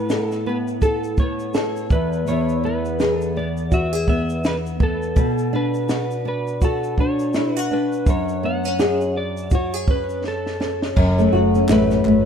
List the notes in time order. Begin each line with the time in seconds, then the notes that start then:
Already playing: A2 B3 B4
0.10 A4, snare, shaker
0.28 A4, snare, shaker
0.46 B3 B4
0.68 shaker
0.82 A4, kick, shaker
1.04 shaker
1.17 B3 C#5, kick, shaker
1.39 shaker
1.54 A4, snare, shaker
1.76 shaker
1.90 E2 B4, kick, shaker
2.13 shaker
2.27 E2 C#5, shaker
2.49 shaker
2.64 B3 B4
2.85 shaker
3.00 G#4, snare, shaker
3.20 A4, shaker
3.36 B3 D5
3.57 shaker
3.72 F#4 E5, kick, shaker
3.93 G#4, shaker
4.07 B3 E5, kick
4.30 shaker
4.44 B4, snare, shaker
4.66 shaker
4.80 B3 A4, kick
5.02 shaker
5.16 B2, kick, shaker
5.38 shaker
5.53 D4 B4
5.74 shaker
5.89 F#4, snare, shaker
6.11 shaker
6.25 D4 B4
6.47 shaker
6.62 F#4 A4, kick, shaker
6.84 shaker
6.98 D4 C#5, kick
7.19 shaker
7.34 E4, snare, shaker
7.54 F#4 B4, shaker
7.71 D4 B4
7.92 shaker
8.06 F#2 C#5, kick, shaker
8.29 shaker
8.43 B3 F#5
8.64 C#4, shaker
8.79 G#4, snare, shaker
9.01 shaker
9.17 D5
9.37 shaker
9.51 F#4, kick, shaker
9.55 C#5
9.73 G#4, shaker
9.88 C#4 B4, kick
10.09 shaker
10.24 A4, snare
10.46 snare
10.60 C#4, snare
10.82 snare
10.96 F#1 F#2, kick, crash
11.18 A3, shaker
11.32 F#1 F#4
11.55 C#4, shaker
11.69 A1 A3 B4, snare, clap, shaker
11.90 C#4, snare, shaker
12.05 G#1 A3, clap